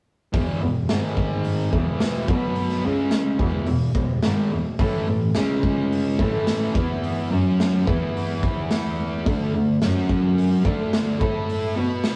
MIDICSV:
0, 0, Header, 1, 4, 480
1, 0, Start_track
1, 0, Tempo, 558140
1, 283, Time_signature, 4, 2, 24, 8
1, 10457, End_track
2, 0, Start_track
2, 0, Title_t, "Distorted electric guitar"
2, 0, Program_c, 0, 30
2, 281, Note_on_c, 0, 40, 83
2, 291, Note_on_c, 0, 47, 87
2, 291, Note_on_c, 0, 52, 98
2, 514, Note_off_c, 0, 40, 0
2, 520, Note_off_c, 0, 47, 0
2, 520, Note_off_c, 0, 52, 0
2, 535, Note_on_c, 0, 40, 67
2, 542, Note_on_c, 0, 47, 60
2, 721, Note_off_c, 0, 40, 0
2, 724, Note_off_c, 0, 47, 0
2, 774, Note_on_c, 0, 44, 93
2, 775, Note_on_c, 0, 51, 93
2, 780, Note_on_c, 0, 56, 105
2, 1476, Note_off_c, 0, 44, 0
2, 1479, Note_on_c, 0, 40, 86
2, 1481, Note_off_c, 0, 51, 0
2, 1483, Note_off_c, 0, 56, 0
2, 1487, Note_on_c, 0, 47, 94
2, 1493, Note_on_c, 0, 52, 100
2, 1953, Note_off_c, 0, 40, 0
2, 1957, Note_off_c, 0, 47, 0
2, 1969, Note_on_c, 0, 47, 88
2, 1977, Note_off_c, 0, 52, 0
2, 1977, Note_on_c, 0, 54, 88
2, 1984, Note_on_c, 0, 59, 90
2, 2437, Note_off_c, 0, 47, 0
2, 2442, Note_off_c, 0, 54, 0
2, 2445, Note_off_c, 0, 59, 0
2, 2452, Note_on_c, 0, 49, 99
2, 2458, Note_on_c, 0, 56, 89
2, 2459, Note_on_c, 0, 61, 87
2, 2917, Note_off_c, 0, 49, 0
2, 2918, Note_on_c, 0, 40, 88
2, 2920, Note_on_c, 0, 47, 89
2, 2922, Note_off_c, 0, 56, 0
2, 2922, Note_off_c, 0, 61, 0
2, 2926, Note_on_c, 0, 52, 106
2, 3144, Note_off_c, 0, 40, 0
2, 3153, Note_off_c, 0, 47, 0
2, 3155, Note_on_c, 0, 40, 64
2, 3156, Note_off_c, 0, 52, 0
2, 3164, Note_on_c, 0, 47, 74
2, 3349, Note_off_c, 0, 40, 0
2, 3354, Note_off_c, 0, 47, 0
2, 3409, Note_on_c, 0, 47, 67
2, 3410, Note_on_c, 0, 40, 59
2, 3597, Note_off_c, 0, 40, 0
2, 3597, Note_off_c, 0, 47, 0
2, 3645, Note_on_c, 0, 44, 96
2, 3647, Note_on_c, 0, 51, 97
2, 3649, Note_on_c, 0, 56, 97
2, 3875, Note_off_c, 0, 44, 0
2, 3876, Note_off_c, 0, 51, 0
2, 3877, Note_off_c, 0, 56, 0
2, 3891, Note_on_c, 0, 47, 68
2, 3892, Note_on_c, 0, 40, 62
2, 4077, Note_off_c, 0, 40, 0
2, 4077, Note_off_c, 0, 47, 0
2, 4124, Note_on_c, 0, 45, 96
2, 4124, Note_on_c, 0, 52, 90
2, 4130, Note_on_c, 0, 57, 85
2, 4354, Note_off_c, 0, 45, 0
2, 4354, Note_off_c, 0, 52, 0
2, 4357, Note_off_c, 0, 57, 0
2, 4366, Note_on_c, 0, 45, 66
2, 4372, Note_on_c, 0, 52, 66
2, 4555, Note_off_c, 0, 45, 0
2, 4558, Note_off_c, 0, 52, 0
2, 4610, Note_on_c, 0, 49, 96
2, 4616, Note_on_c, 0, 56, 110
2, 4622, Note_on_c, 0, 61, 103
2, 5317, Note_off_c, 0, 49, 0
2, 5320, Note_off_c, 0, 56, 0
2, 5323, Note_off_c, 0, 61, 0
2, 5336, Note_on_c, 0, 45, 88
2, 5343, Note_on_c, 0, 52, 91
2, 5354, Note_on_c, 0, 57, 99
2, 5796, Note_off_c, 0, 52, 0
2, 5800, Note_off_c, 0, 45, 0
2, 5806, Note_on_c, 0, 52, 79
2, 5809, Note_off_c, 0, 57, 0
2, 5812, Note_on_c, 0, 59, 98
2, 5818, Note_on_c, 0, 64, 86
2, 6275, Note_off_c, 0, 52, 0
2, 6278, Note_off_c, 0, 59, 0
2, 6281, Note_off_c, 0, 64, 0
2, 6284, Note_on_c, 0, 54, 86
2, 6296, Note_on_c, 0, 61, 84
2, 6301, Note_on_c, 0, 66, 89
2, 6754, Note_off_c, 0, 54, 0
2, 6760, Note_off_c, 0, 61, 0
2, 6763, Note_off_c, 0, 66, 0
2, 6766, Note_on_c, 0, 52, 87
2, 6773, Note_on_c, 0, 59, 85
2, 6775, Note_on_c, 0, 64, 93
2, 7956, Note_off_c, 0, 52, 0
2, 7960, Note_off_c, 0, 59, 0
2, 7960, Note_off_c, 0, 64, 0
2, 7966, Note_on_c, 0, 50, 88
2, 7969, Note_on_c, 0, 57, 83
2, 7974, Note_on_c, 0, 62, 95
2, 8192, Note_off_c, 0, 50, 0
2, 8195, Note_off_c, 0, 57, 0
2, 8200, Note_off_c, 0, 62, 0
2, 8203, Note_on_c, 0, 50, 57
2, 8206, Note_on_c, 0, 57, 64
2, 8394, Note_off_c, 0, 50, 0
2, 8395, Note_off_c, 0, 57, 0
2, 8444, Note_on_c, 0, 54, 92
2, 8444, Note_on_c, 0, 61, 94
2, 8453, Note_on_c, 0, 66, 98
2, 9152, Note_off_c, 0, 54, 0
2, 9155, Note_on_c, 0, 50, 97
2, 9156, Note_off_c, 0, 61, 0
2, 9161, Note_off_c, 0, 66, 0
2, 9164, Note_on_c, 0, 57, 92
2, 9171, Note_on_c, 0, 62, 104
2, 9615, Note_off_c, 0, 57, 0
2, 9626, Note_on_c, 0, 57, 84
2, 9630, Note_off_c, 0, 62, 0
2, 9633, Note_off_c, 0, 50, 0
2, 9634, Note_on_c, 0, 64, 81
2, 9638, Note_on_c, 0, 69, 98
2, 10108, Note_off_c, 0, 57, 0
2, 10112, Note_on_c, 0, 59, 89
2, 10113, Note_off_c, 0, 64, 0
2, 10115, Note_off_c, 0, 69, 0
2, 10118, Note_on_c, 0, 66, 92
2, 10122, Note_on_c, 0, 71, 97
2, 10457, Note_off_c, 0, 59, 0
2, 10457, Note_off_c, 0, 66, 0
2, 10457, Note_off_c, 0, 71, 0
2, 10457, End_track
3, 0, Start_track
3, 0, Title_t, "Cello"
3, 0, Program_c, 1, 42
3, 301, Note_on_c, 1, 40, 85
3, 370, Note_off_c, 1, 40, 0
3, 526, Note_on_c, 1, 40, 67
3, 595, Note_off_c, 1, 40, 0
3, 773, Note_on_c, 1, 44, 85
3, 842, Note_off_c, 1, 44, 0
3, 1489, Note_on_c, 1, 40, 85
3, 1558, Note_off_c, 1, 40, 0
3, 1970, Note_on_c, 1, 47, 89
3, 2039, Note_off_c, 1, 47, 0
3, 2452, Note_on_c, 1, 37, 86
3, 2521, Note_off_c, 1, 37, 0
3, 2926, Note_on_c, 1, 40, 99
3, 2995, Note_off_c, 1, 40, 0
3, 3159, Note_on_c, 1, 40, 78
3, 3228, Note_off_c, 1, 40, 0
3, 3397, Note_on_c, 1, 40, 73
3, 3466, Note_off_c, 1, 40, 0
3, 3646, Note_on_c, 1, 44, 96
3, 3715, Note_off_c, 1, 44, 0
3, 3881, Note_on_c, 1, 40, 69
3, 3949, Note_off_c, 1, 40, 0
3, 4127, Note_on_c, 1, 45, 94
3, 4196, Note_off_c, 1, 45, 0
3, 4363, Note_on_c, 1, 45, 70
3, 4432, Note_off_c, 1, 45, 0
3, 4603, Note_on_c, 1, 37, 82
3, 4672, Note_off_c, 1, 37, 0
3, 5331, Note_on_c, 1, 45, 87
3, 5399, Note_off_c, 1, 45, 0
3, 5811, Note_on_c, 1, 40, 87
3, 5880, Note_off_c, 1, 40, 0
3, 6299, Note_on_c, 1, 42, 85
3, 6368, Note_off_c, 1, 42, 0
3, 6775, Note_on_c, 1, 40, 97
3, 6844, Note_off_c, 1, 40, 0
3, 7969, Note_on_c, 1, 38, 86
3, 8038, Note_off_c, 1, 38, 0
3, 8214, Note_on_c, 1, 38, 71
3, 8283, Note_off_c, 1, 38, 0
3, 8462, Note_on_c, 1, 42, 89
3, 8531, Note_off_c, 1, 42, 0
3, 9165, Note_on_c, 1, 38, 86
3, 9233, Note_off_c, 1, 38, 0
3, 9645, Note_on_c, 1, 45, 80
3, 9714, Note_off_c, 1, 45, 0
3, 10127, Note_on_c, 1, 47, 83
3, 10195, Note_off_c, 1, 47, 0
3, 10457, End_track
4, 0, Start_track
4, 0, Title_t, "Drums"
4, 290, Note_on_c, 9, 36, 98
4, 292, Note_on_c, 9, 46, 51
4, 376, Note_off_c, 9, 36, 0
4, 378, Note_off_c, 9, 46, 0
4, 767, Note_on_c, 9, 38, 109
4, 767, Note_on_c, 9, 46, 51
4, 853, Note_off_c, 9, 38, 0
4, 853, Note_off_c, 9, 46, 0
4, 1007, Note_on_c, 9, 36, 74
4, 1093, Note_off_c, 9, 36, 0
4, 1241, Note_on_c, 9, 46, 63
4, 1327, Note_off_c, 9, 46, 0
4, 1487, Note_on_c, 9, 36, 88
4, 1573, Note_off_c, 9, 36, 0
4, 1724, Note_on_c, 9, 38, 107
4, 1724, Note_on_c, 9, 46, 53
4, 1810, Note_off_c, 9, 38, 0
4, 1810, Note_off_c, 9, 46, 0
4, 1965, Note_on_c, 9, 36, 98
4, 2051, Note_off_c, 9, 36, 0
4, 2196, Note_on_c, 9, 46, 49
4, 2282, Note_off_c, 9, 46, 0
4, 2317, Note_on_c, 9, 38, 35
4, 2403, Note_off_c, 9, 38, 0
4, 2676, Note_on_c, 9, 38, 102
4, 2676, Note_on_c, 9, 46, 47
4, 2762, Note_off_c, 9, 38, 0
4, 2762, Note_off_c, 9, 46, 0
4, 2918, Note_on_c, 9, 36, 103
4, 3004, Note_off_c, 9, 36, 0
4, 3149, Note_on_c, 9, 46, 53
4, 3235, Note_off_c, 9, 46, 0
4, 3395, Note_on_c, 9, 36, 90
4, 3481, Note_off_c, 9, 36, 0
4, 3633, Note_on_c, 9, 38, 105
4, 3633, Note_on_c, 9, 46, 53
4, 3719, Note_off_c, 9, 38, 0
4, 3719, Note_off_c, 9, 46, 0
4, 4118, Note_on_c, 9, 46, 52
4, 4119, Note_on_c, 9, 36, 108
4, 4204, Note_off_c, 9, 46, 0
4, 4205, Note_off_c, 9, 36, 0
4, 4597, Note_on_c, 9, 38, 107
4, 4597, Note_on_c, 9, 46, 56
4, 4683, Note_off_c, 9, 38, 0
4, 4683, Note_off_c, 9, 46, 0
4, 4841, Note_on_c, 9, 36, 72
4, 4927, Note_off_c, 9, 36, 0
4, 5092, Note_on_c, 9, 46, 64
4, 5178, Note_off_c, 9, 46, 0
4, 5324, Note_on_c, 9, 36, 79
4, 5410, Note_off_c, 9, 36, 0
4, 5564, Note_on_c, 9, 38, 104
4, 5564, Note_on_c, 9, 46, 57
4, 5650, Note_off_c, 9, 38, 0
4, 5650, Note_off_c, 9, 46, 0
4, 5805, Note_on_c, 9, 36, 101
4, 5891, Note_off_c, 9, 36, 0
4, 6050, Note_on_c, 9, 46, 55
4, 6136, Note_off_c, 9, 46, 0
4, 6537, Note_on_c, 9, 38, 99
4, 6537, Note_on_c, 9, 46, 50
4, 6623, Note_off_c, 9, 38, 0
4, 6623, Note_off_c, 9, 46, 0
4, 6773, Note_on_c, 9, 36, 95
4, 6859, Note_off_c, 9, 36, 0
4, 7026, Note_on_c, 9, 46, 61
4, 7112, Note_off_c, 9, 46, 0
4, 7252, Note_on_c, 9, 36, 85
4, 7338, Note_off_c, 9, 36, 0
4, 7489, Note_on_c, 9, 38, 94
4, 7489, Note_on_c, 9, 46, 48
4, 7575, Note_off_c, 9, 38, 0
4, 7575, Note_off_c, 9, 46, 0
4, 7964, Note_on_c, 9, 46, 45
4, 7967, Note_on_c, 9, 36, 97
4, 8050, Note_off_c, 9, 46, 0
4, 8053, Note_off_c, 9, 36, 0
4, 8442, Note_on_c, 9, 38, 103
4, 8442, Note_on_c, 9, 46, 52
4, 8528, Note_off_c, 9, 38, 0
4, 8528, Note_off_c, 9, 46, 0
4, 8681, Note_on_c, 9, 36, 77
4, 8767, Note_off_c, 9, 36, 0
4, 8925, Note_on_c, 9, 46, 61
4, 9011, Note_off_c, 9, 46, 0
4, 9158, Note_on_c, 9, 36, 91
4, 9244, Note_off_c, 9, 36, 0
4, 9402, Note_on_c, 9, 38, 108
4, 9402, Note_on_c, 9, 46, 54
4, 9488, Note_off_c, 9, 38, 0
4, 9488, Note_off_c, 9, 46, 0
4, 9640, Note_on_c, 9, 36, 97
4, 9726, Note_off_c, 9, 36, 0
4, 9883, Note_on_c, 9, 46, 57
4, 9969, Note_off_c, 9, 46, 0
4, 10352, Note_on_c, 9, 38, 97
4, 10352, Note_on_c, 9, 46, 57
4, 10438, Note_off_c, 9, 38, 0
4, 10438, Note_off_c, 9, 46, 0
4, 10457, End_track
0, 0, End_of_file